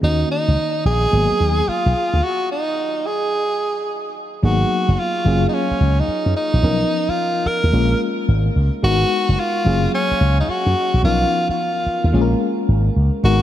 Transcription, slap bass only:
0.03 0.22 D#2 loud
0.48 0.55 C#2 medium
0.85 1.05 A#1 medium
1.13 1.26 G#1 loud
1.40 1.60 D#2 medium
1.68 muted slap bass stroke soft
1.86 1.93 B1 medium
2.13 2.20 D2 medium
4.43 4.63 G#1 loud
4.88 4.95 F#1 loud
5.26 5.45 F#1 loud
5.71 muted slap bass stroke medium
5.81 6.00 C#2 loud
6.08 muted slap bass stroke soft
6.26 6.33 F#2 medium
6.54 6.60 A#1 medium
6.63 6.83 B1 loud
7.09 muted slap bass stroke soft
7.46 muted slap bass stroke medium
7.64 7.70 D#2 medium
7.73 7.93 A#1 loud
8.28 8.48 G#1 medium
8.56 8.69 C#2 medium
8.83 9.03 G#1 loud
9.29 9.36 F#1 medium
9.66 9.86 F#1 loud
10.11 muted slap bass stroke medium
10.21 10.41 C#2 loud
10.48 muted slap bass stroke soft
10.66 10.73 F#2 loud
10.94 11.01 A#1 medium
11.04 11.23 B1 loud
11.49 muted slap bass stroke medium
11.86 muted slap bass stroke soft
12.04 12.11 D#2 medium
12.14 12.33 A#1 loud
12.69 12.88 G#1 medium
12.96 13.09 C#2 medium
13.24 13.42 G#1 loud

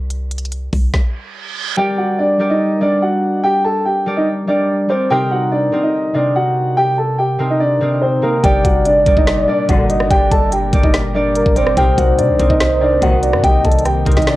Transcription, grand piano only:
1.77 1.96 G4 medium
1.77 1.95 G5 loud
1.98 2.17 F#4 medium
1.98 2.16 F#5 medium
2.19 2.49 D4 medium
2.19 2.48 D5 medium
2.50 2.80 D#4 medium
2.50 2.79 D#5 medium
2.81 3.00 D4 medium
2.81 3.00 D5 medium
3.02 3.42 F#4 medium
3.02 3.41 F#5 medium
3.44 3.62 G4 medium
3.44 3.62 G5 loud
3.64 3.83 A4 medium
3.64 3.83 A5 medium
3.85 4.15 G4 medium
3.85 4.15 G5 medium
4.17 4.26 D#4 medium
4.17 4.26 D#5 medium
4.48 4.88 D4 medium
4.48 4.87 D5 medium
4.90 5.08 C4 medium
4.90 5.08 C5 medium
5.11 5.29 G4 medium
5.11 5.29 G5 loud
5.31 5.50 F#4 medium
5.31 5.50 F#5 medium
5.52 5.82 D4 medium
5.52 5.81 D5 medium
5.83 6.13 D#4 medium
5.83 6.13 D#5 medium
6.15 6.33 D4 medium
6.15 6.33 D5 medium
6.36 6.75 F#4 medium
6.36 6.75 F#5 medium
6.77 6.96 G4 medium
6.77 6.95 G5 loud
6.98 7.17 A4 medium
6.98 7.16 A5 medium
7.19 7.48 G4 medium
7.19 7.48 G5 medium
7.50 7.60 D#4 medium
7.50 7.59 D#5 medium
7.60 8.00 D4 medium
7.60 7.99 D5 medium
8.02 8.21 C4 medium
8.02 8.20 C5 medium
8.23 8.42 A#3 medium
8.23 8.41 A#4 medium
8.44 8.62 G4 medium
8.44 8.62 G5 loud
8.64 8.83 F#4 medium
8.64 8.83 F#5 medium
8.86 9.15 D4 medium
8.86 9.15 D5 medium
9.17 9.46 D#4 medium
9.17 9.46 D#5 medium
9.48 9.67 D4 medium
9.48 9.66 D5 medium
9.69 10.09 F#4 medium
9.69 10.08 F#5 medium
10.10 10.29 G4 medium
10.10 10.29 G5 loud
10.31 10.50 A4 medium
10.31 10.50 A5 medium
10.52 10.82 G4 medium
10.52 10.82 G5 medium
10.84 10.93 D#4 medium
10.84 10.93 D#5 medium
11.15 11.54 D4 medium
11.15 11.54 D5 medium
11.56 11.75 C4 medium
11.56 11.75 C5 medium
11.77 11.96 G4 medium
11.77 11.96 G5 loud
11.98 12.17 F#4 medium
11.98 12.16 F#5 medium
12.19 12.48 D4 medium
12.19 12.48 D5 medium
12.50 12.80 D#4 medium
12.50 12.79 D#5 medium
12.81 13.00 D4 medium
12.81 13.00 D5 medium
13.03 13.42 F#4 medium
13.03 13.42 F#5 medium
13.44 13.63 G4 medium
13.44 13.62 G5 loud
13.65 13.83 A4 medium
13.65 13.83 A5 medium
13.85 14.15 G4 medium
13.85 14.15 G5 medium
14.17 14.26 D#4 medium
14.17 14.26 D#5 medium
14.27 14.36 D4 medium
14.27 14.36 D5 medium

